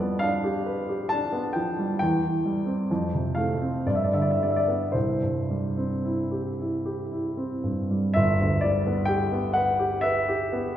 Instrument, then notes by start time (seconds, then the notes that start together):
grand piano
Already playing: F2 F3 G3 D5
0.00 B3
0.19 D4 F5
0.44 G4
0.66 B4
0.89 G4
1.09 D4 A5
1.33 B3
1.53 F3 G5
1.79 G3
1.99 E2 G5
2.25 E3
2.46 G3
2.66 C4
2.91 F2
3.14 C3
3.35 A3 F5
3.61 C4
3.86 G2 D5
3.95 E5
4.04 D5
4.13 D3 E5
4.22 D5
4.31 E5
4.40 G3 D5
4.51 E5
4.56 D5
4.68 B3
4.92 C2 C5
5.23 G2
5.50 G3
5.77 C4
6.04 E4
6.31 G4
6.60 E4
6.86 G4
7.12 E4
7.37 C4
7.63 G2
7.91 G3
8.14 G1 E5
8.40 D2
8.61 G3 D5
8.86 B3
9.05 G4 G5
9.32 B3
9.53 B4 F#5
9.79 G4
10.01 B4 E5
10.29 G4
10.53 B3